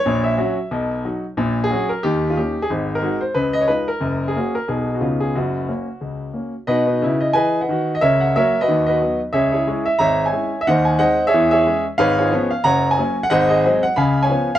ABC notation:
X:1
M:4/4
L:1/16
Q:"Swing" 1/4=181
K:F#
V:1 name="Grand piano"
c2 =e6 z8 | z3 G3 A2 =G3 E G3 ^G | z3 A3 ^B2 =B2 d c B2 A2- | A3 G3 A2 G3 F E2 G2 |
F12- F2 z2 | [K:B] [FBd]2 [DFB]4 d2 [Bdg]3 [Bdf]4 d | [Ace]2 f2 [Ace]3 [FBd]3 [FBd]4 z2 | [Gce]2 [EGc]4 e2 [cea]3 [ceg]4 e |
[^Bdf]2 g2 [Bdf]3 [Gce]3 [Gce]4 z2 | [K:C#mix] [Bce]2 [EGc]4 e2 [cfa]3 g4 f | [^Bdf]2 [GBd]4 f2 [eg=b]3 [ceg]4 e |]
V:2 name="Grand piano" clef=bass
[A,,,A,,]4 [F,CF]4 [B,,,B,,]4 [F,DF]4 | [A,,,A,,]4 [F,CF]4 [D,,D,]4 [A,CD]4 | [G,,,G,,]4 [G,DF]4 [C,,C,]4 [G,DE]4 | [F,,,F,,]4 [A,CF]4 [B,,,B,,B,DF]4 [C,,C,B,CD]4 |
[F,,,F,,]4 [A,C]4 [C,,C,]4 [A,C]4 | [K:B] [B,,D]4 [C,E]4 [E,G]4 [D,F]4 | [C,,C,]4 [F,A,F]4 [D,,D,]4 [F,B,D]4 | [C,,C,]4 [G,CE]4 [G,,,G,,]4 [G,CE]4 |
[D,,D,]4 [G,^B,D]4 [E,,E,]4 [G,C]4 | [K:C#mix] [G,,,G,,]4 [E,B,C]4 [F,,,F,,]4 [F,A,C]4 | [G,,,G,,]4 [F,G,^B,]4 [C,,C,]4 [E,=B,C]4 |]